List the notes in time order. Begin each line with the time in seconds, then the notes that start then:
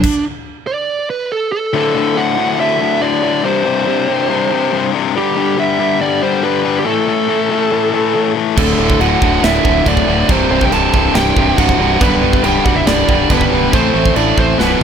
Already playing: D4
0.04 kick, crash
0.67 D5
1.10 B4
1.32 A4
1.52 A4
1.73 D2 A2 D3 A4
1.95 D2 A2 D3
2.16 D2 A2 D3 F#5
2.37 D2 A2 D3
2.59 D2 A2 D3 E5
2.80 D2 A2 D3
3.01 D2 A2 D3 D5
3.23 D2 A2 D3
3.43 C2 G2 C3 C5
3.65 C2 G2 C3
3.86 C2 G2 C3
4.08 C2 G2 C3
4.29 C2 G2 C3
4.51 C2 G2 C3
4.72 C2 G2 C3
4.94 C2 G2 C3
5.15 G2 D3 G3 G4
5.36 G2 D3 G3
5.57 G2 D3 G3 E5
5.79 G2 D3 G3
6.00 G2 D3 G3 D5
6.22 G2 D3 G3 C5
6.44 G2 D3 G3 B4
6.64 G2 D3 G3
6.79 G4
6.85 A2 E3 A3 A4
7.07 A2 E3 A3
7.29 A2 E3 A3
7.50 A2 E3 A3
7.71 A2 E3 A3
7.93 A2 E3 A3
8.14 A2 E3 A3
8.36 A2 E3 A3
8.57 D1 D2 A2 D3 A3 A4, kick, crash, china
8.78 D1 D2 A2 D3
8.90 kick
8.99 D1 D2 A2 D3 F#4 F#5, china
9.20 D1 D2 A2 D3, kick
9.42 D1 D2 A2 D3 E4 E5, snare, china
9.63 D1 D2 A2 D3, kick
9.85 D1 D2 A2 D3 D4 D5, kick, china
9.97 kick
10.07 D1 D2 A2 D3
10.28 C1 C2 G2 C3 C4 C5, kick, china
10.50 C1 C2 G2 C3 C4 C5
10.61 G4 G5, kick
10.71 C1 C2 G2 C3 A4 A5, china
10.93 C1 C2 G2 C3, kick
11.14 C1 C2 G2 C3 G4 G5, snare, china
11.36 C1 C2 G2 C3, kick
11.56 C1 C2 G2 C3 F#4 F#5, kick, china
11.69 kick
11.79 C1 C2 G2 C3
11.99 B0 G2 D3 G3 B3 B4, kick, china
12.21 B0 G2 D3 G3
12.33 kick
12.42 B0 G2 D3 G3 G4 G5, china
12.65 B0 G2 D3 G3 F#4 F#5, kick
12.76 E4 E5
12.86 B0 G2 D3 G3 D4 D5, snare, china
13.08 B0 G2 D3 G3, kick
13.29 B0 G2 D3 G3 B3 B4, kick, china
13.41 kick
13.50 B0 G2 D3 G3
13.72 A1 A2 E3 A3 C4 C5, kick, china
13.93 A1 A2 E3 A3
14.06 kick
14.16 A1 A2 E3 A3 D4 D5, china
14.37 A1 A2 E3 A3 C4 C5, kick
14.59 B0 B1 F#2 B2 B3 B4, snare